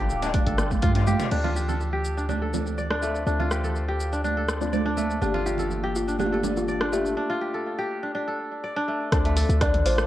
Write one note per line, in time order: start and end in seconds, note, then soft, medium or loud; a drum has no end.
0.00 0.11 G1 loud
0.00 1.11 A3 medium
0.00 0.68 A#3 medium
0.00 0.22 D4 medium
0.00 0.68 D4 medium
0.00 0.69 F4 medium
0.00 0.82 F4 loud
0.00 0.68 G4 medium
0.00 1.07 G4 loud
0.00 0.46 A4 medium
0.00 0.68 D5 loud
0.00 1.28 F5 medium
0.00 1.28 G5 medium
0.00 1.28 D6 medium
0.10 0.42 D1 medium
0.10 shaker medium
0.22 0.34 D4 medium
0.22 closed hi-hat soft
0.22 djembe slap loud
0.22 shaker medium
0.34 1.31 D4 medium
0.34 kick loud
0.34 closed hi-hat medium
0.34 djembe tone medium
0.34 high conga medium
0.34 shaker soft
0.47 0.84 G1 medium
0.47 1.68 A4 medium
0.47 closed hi-hat soft
0.58 cross-stick medium
0.58 high tom medium
0.58 shaker medium
0.71 kick medium
0.71 high tom medium
0.71 djembe tone medium
0.71 high conga medium
0.71 shaker soft
0.82 1.16 G2 loud
0.82 0.95 F4 loud
0.82 kick loud
0.82 closed hi-hat medium
0.82 mid tom medium
0.82 high conga medium
0.82 shaker soft
0.95 1.44 F4 medium
0.95 closed hi-hat soft
0.95 mid tom medium
0.95 djembe slap medium
1.07 1.55 G4 loud
1.07 high conga medium
1.07 shaker medium
1.19 closed hi-hat soft
1.19 mid tom medium
1.19 djembe slap loud
1.19 shaker soft
1.31 3.25 D2 medium
1.31 2.51 C4 medium
1.31 2.17 D4 medium
1.31 2.51 D4 medium
1.31 2.51 F4 medium
1.31 2.51 A4 medium
1.31 5.18 C5 medium
1.31 2.51 D5 medium
1.31 7.13 F5 medium
1.31 5.18 A5 medium
1.31 7.13 D6 medium
1.31 crash medium
1.31 shaker soft
1.44 2.95 F4 medium
1.44 low conga loud
1.56 1.92 G4 medium
1.56 shaker medium
1.69 2.42 A4 medium
1.69 low conga medium
1.69 shaker soft
1.81 shaker soft
1.93 3.34 G4 medium
2.05 shaker medium
2.17 2.29 D4 medium
2.17 shaker soft
2.29 2.90 D4 medium
2.29 high conga medium
2.29 low conga medium
2.29 shaker soft
2.42 3.64 A4 medium
2.54 3.00 C4 medium
2.54 3.00 D4 medium
2.54 3.00 F4 medium
2.54 3.00 A4 medium
2.54 3.00 D5 medium
2.54 high conga medium
2.54 low conga medium
2.54 shaker medium
2.66 shaker soft
2.78 3.89 D5 medium
2.78 shaker soft
2.91 3.26 D4 medium
2.91 cross-stick medium
3.02 4.97 A3 medium
3.02 3.24 C4 medium
3.02 3.24 D4 medium
3.02 3.24 F4 medium
3.02 3.24 A4 medium
3.02 3.24 D5 medium
3.02 shaker medium
3.15 shaker soft
3.27 5.20 D2 medium
3.27 4.59 C4 medium
3.27 4.12 D4 medium
3.27 4.59 D4 medium
3.27 4.59 F4 medium
3.27 4.59 A4 medium
3.27 4.59 D5 medium
3.27 shaker soft
3.40 4.91 F4 medium
3.40 low conga medium
3.51 3.88 G4 medium
3.51 cross-stick medium
3.51 shaker medium
3.64 4.37 A4 medium
3.64 shaker soft
3.76 shaker soft
3.89 5.30 G4 medium
4.00 shaker medium
4.13 4.24 D4 medium
4.13 shaker soft
4.24 4.85 D4 medium
4.24 high conga medium
4.24 shaker soft
4.37 5.59 A4 medium
4.49 cross-stick medium
4.49 shaker medium
4.61 4.71 C4 medium
4.61 4.71 D4 medium
4.61 4.71 F4 medium
4.61 4.71 A4 medium
4.61 4.71 D5 loud
4.61 high conga medium
4.61 shaker soft
4.73 5.19 C4 medium
4.73 5.19 D4 medium
4.73 5.19 F4 medium
4.73 5.19 A4 medium
4.73 5.19 C5 medium
4.73 5.84 D5 medium
4.73 high conga medium
4.73 shaker soft
4.86 5.21 D4 medium
4.97 6.92 A3 medium
4.97 high conga medium
4.97 shaker medium
5.10 shaker soft
5.22 7.15 G1 medium
5.22 6.41 A#3 medium
5.22 7.15 A#3 medium
5.22 6.41 D4 medium
5.22 6.07 D4 medium
5.22 6.41 F4 medium
5.22 6.41 G4 medium
5.22 5.47 G4 medium
5.22 6.41 D5 medium
5.22 7.15 G5 medium
5.22 shaker soft
5.34 6.86 F4 medium
5.34 low conga medium
5.46 5.95 F4 medium
5.46 5.83 G4 medium
5.46 shaker medium
5.58 6.32 A4 medium
5.58 low conga medium
5.58 shaker medium
5.71 shaker soft
5.84 7.25 G4 medium
5.96 6.18 F4 medium
5.96 shaker medium
6.08 6.19 D4 medium
6.08 shaker medium
6.19 6.81 D4 medium
6.19 6.28 G4 medium
6.19 high conga medium
6.19 low conga medium
6.19 shaker soft
6.26 6.34 F4 medium
6.32 6.58 G4 medium
6.32 7.54 A4 medium
6.43 6.90 A#3 medium
6.43 6.90 D4 medium
6.43 6.90 F4 medium
6.43 6.90 G4 medium
6.43 6.90 D5 medium
6.43 high conga medium
6.43 low conga medium
6.43 shaker medium
6.57 6.94 F4 medium
6.57 shaker soft
6.68 7.79 D5 medium
6.68 shaker soft
6.81 7.16 D4 medium
6.81 cross-stick medium
6.92 8.88 A3 medium
6.92 7.14 A#3 medium
6.92 7.14 D4 medium
6.92 7.14 F4 medium
6.92 7.14 G4 medium
6.92 7.16 G4 medium
6.92 7.14 D5 medium
6.92 shaker medium
7.06 shaker medium
7.17 8.03 D4 medium
7.30 8.81 F4 medium
7.41 7.78 G4 medium
7.54 8.27 A4 medium
7.79 9.20 G4 medium
8.03 8.14 D4 medium
8.15 8.76 D4 medium
8.28 9.36 A4 medium
8.64 9.74 D5 medium
8.76 9.12 D4 loud
8.88 9.25 A3 medium
9.12 9.45 D2 loud
9.12 10.07 C4 medium
9.12 9.61 D4 medium
9.12 10.07 D4 medium
9.12 10.07 F4 medium
9.12 10.07 A4 medium
9.12 10.07 C5 medium
9.12 10.07 D5 medium
9.12 10.07 F5 medium
9.12 10.07 A5 medium
9.12 10.07 D6 medium
9.12 kick loud
9.12 cross-stick medium
9.12 closed hi-hat medium
9.12 shaker soft
9.25 10.07 A3 medium
9.25 closed hi-hat soft
9.36 10.07 A4 medium
9.36 open hi-hat medium
9.36 shaker medium
9.49 9.87 D2 medium
9.49 closed hi-hat soft
9.49 shaker medium
9.61 10.07 D4 loud
9.61 9.73 D5 loud
9.61 kick loud
9.61 cross-stick medium
9.61 closed hi-hat medium
9.61 shaker soft
9.74 closed hi-hat soft
9.74 mid tom medium
9.85 10.07 A1 medium
9.85 10.07 F4 medium
9.85 10.07 C5 loud
9.85 open hi-hat medium
9.85 shaker medium
9.98 cross-stick loud
9.98 shaker medium